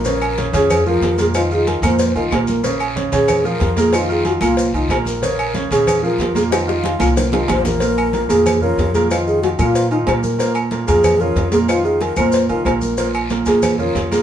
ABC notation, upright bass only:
X:1
M:4/4
L:1/8
Q:1/4=186
K:Bbm
V:1 name="Upright bass" clef=bass
B,,,3 F,,3 F,,2- | F,,3 F,,2 C,, B,,,2- | B,,,3 B,,3 F,,2- | F,,3 C,,2 C,, B,,,2- |
B,,,3 B,,3 F,,2- | F,,3 C,,3 B,,,2- | B,,,3 F,,3 F,,2- | F,,3 B,,3 B,,2- |
B,,3 F,,3 F,,2- | F,,3 F,,2 C,, B,,,2- | B,,,3 F,,3 F,,2 |]